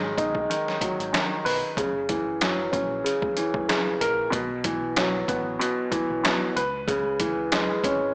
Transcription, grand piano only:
0.00 0.48 D#3 loud
0.00 0.80 F#3 medium
0.00 1.78 G#3 medium
0.18 1.77 D#4 medium
0.50 1.11 D#3 medium
0.82 1.77 F#3 medium
1.13 1.77 D#3 medium
1.45 1.77 B4 medium
1.78 3.03 C#3 medium
2.09 3.36 E3 medium
2.41 4.33 F#3 medium
2.72 4.32 C#4 medium
3.04 3.67 C#3 medium
3.37 4.33 E3 medium
3.68 4.32 C#3 medium
4.01 4.33 A#4 medium
4.30 5.58 B2 medium
4.64 5.89 E3 medium
4.98 6.57 F#3 medium
5.28 6.56 B3 medium
5.59 6.22 B2 medium
5.90 6.55 E3 medium
6.24 6.56 B2 medium
6.56 6.88 B4 medium
6.87 8.14 C#3 medium
7.20 8.14 E3 medium
7.52 8.14 G#3 medium
7.84 8.14 C#4 medium

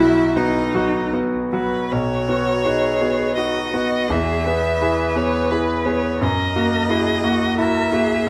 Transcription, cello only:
0.00 0.38 E4 medium
0.37 1.14 D#4 medium
1.92 2.66 F#4 soft
2.65 3.38 G#4 medium
3.36 3.72 F#4 soft
3.73 4.10 F#4 soft
4.08 4.46 G#4 soft
4.45 6.20 B4 medium
6.21 6.92 A#4 medium
6.90 7.26 G#4 medium
7.24 7.58 F#4 medium
7.58 7.94 A#4 medium
7.92 8.29 G#4 medium

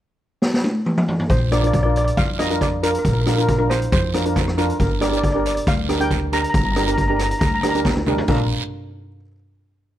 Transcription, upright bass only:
1.30 2.07 A#1 medium
2.17 2.95 F2 medium
3.05 3.82 A#1 medium
3.92 4.70 F2 medium
4.80 5.57 G1 medium
5.67 6.44 D2 medium
6.54 7.32 G1 medium
7.41 8.19 D2 medium
8.28 8.48 A#1 medium

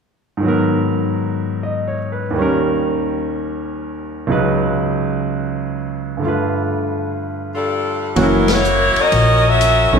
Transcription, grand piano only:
0.37 2.33 G#2 soft
0.37 2.32 D#3 soft
0.43 2.36 F#3 soft
0.43 2.38 B3 soft
0.48 2.39 A#4 medium
1.63 1.97 D#5 soft
1.88 2.25 C#5 soft
2.12 2.46 B4 soft
2.31 4.27 D#2 soft
2.31 4.28 D#3 soft
2.36 4.30 G3 soft
2.36 4.31 C#4 soft
2.42 4.33 A#4 medium
4.27 6.22 C#2 medium
4.27 6.22 C#3 soft
4.27 6.23 F#3 soft
4.27 6.24 D#4 soft
4.32 6.24 B4 medium
6.17 8.13 G2 soft
6.17 8.14 D3 soft
6.23 8.16 A3 soft
6.23 8.17 F4 soft
6.28 8.19 B4 soft
8.16 8.45 E3 soft
8.16 8.45 F#3 medium
8.16 8.45 A#3 soft
8.16 8.45 C#4 soft
8.16 8.45 F#4 medium
9.93 9.99 D#3 medium
9.93 9.99 F#3 medium
9.93 9.99 A3 medium
9.93 9.99 B3 medium
9.93 9.99 C#4 medium

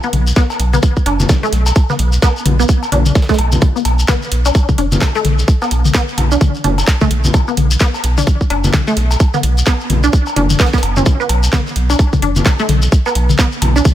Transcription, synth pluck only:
0.04 0.07 B3 medium
0.36 0.41 B3 medium
0.73 0.79 B3 medium
1.06 1.11 D4 medium
1.43 1.45 A3 loud
1.90 1.93 B3 medium
2.22 2.27 B3 loud
2.60 2.65 B3 medium
2.92 2.97 D4 medium
3.29 3.31 A3 loud
3.76 3.79 B3 medium
4.08 4.14 B3 loud
4.46 4.49 D4 medium
4.78 4.83 D4 medium
5.15 5.17 A3 loud
5.62 5.65 B3 medium
5.94 6.00 B3 loud
6.32 6.35 D4 medium
6.64 6.69 D4 medium
7.01 7.03 A3 loud
7.48 7.51 B3 medium
7.81 7.86 B3 loud
8.18 8.21 D4 medium
8.50 8.55 D4 medium
8.87 8.89 A3 loud
9.34 9.37 B3 medium
9.67 9.72 B3 loud
10.04 10.07 D4 medium
10.36 10.41 D4 medium
10.60 10.65 B3 medium
10.73 10.75 B3 medium
10.97 11.02 C#4 medium
11.20 11.23 B3 medium
11.53 11.58 B3 medium
11.90 11.93 D4 medium
12.22 12.28 D4 medium
12.59 12.62 A3 loud
13.06 13.09 B3 medium
13.39 13.44 B3 medium
13.76 13.79 D4 medium

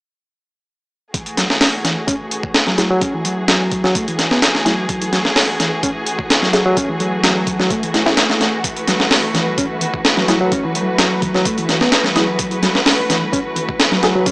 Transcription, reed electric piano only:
1.38 1.44 F#3 medium
1.61 1.67 C#4 medium
1.84 1.95 E3 medium
2.07 2.14 C#4 medium
2.67 2.77 F#3 medium
2.78 2.89 F#3 medium
2.91 3.01 F#3 medium
3.01 3.13 C#4 medium
3.14 3.24 E3 medium
3.25 3.47 F#3 medium
3.48 3.83 F#3 medium
3.84 3.95 F#3 medium
3.95 4.06 A3 medium
4.08 4.30 E3 medium
4.31 4.41 B3 medium
4.66 5.12 F#3 medium
5.13 5.19 F#3 medium
5.36 5.42 C#4 medium
5.60 5.70 E3 medium
5.83 5.89 C#4 medium
6.42 6.52 F#3 medium
6.54 6.64 F#3 medium
6.66 6.76 F#3 medium
6.77 6.88 C#4 medium
6.90 6.99 E3 medium
7.00 7.22 F#3 medium
7.24 7.58 F#3 medium
7.60 7.70 F#3 medium
7.71 7.82 A3 medium
7.83 7.93 E3 medium
8.07 8.16 C#4 medium
8.30 8.40 A3 medium
8.41 8.53 A3 medium
8.88 8.94 F#3 medium
9.11 9.17 C#4 medium
9.35 9.45 E3 medium
9.58 9.64 C#4 medium
10.17 10.27 F#3 medium
10.29 10.39 F#3 medium
10.41 10.51 F#3 medium
10.52 10.63 C#4 medium
10.65 10.74 E3 medium
10.76 10.98 F#3 medium
10.99 11.33 F#3 medium
11.35 11.45 F#3 medium
11.46 11.57 A3 medium
11.58 11.80 E3 medium
11.81 11.90 B3 medium
12.16 12.62 F#3 medium
12.63 12.69 F#3 medium
12.87 12.93 C#4 medium
13.10 13.20 E3 medium
13.33 13.39 C#4 medium
13.92 14.02 F#3 medium
14.03 14.14 F#3 medium
14.15 14.26 F#3 loud
14.27 14.32 C#4 medium

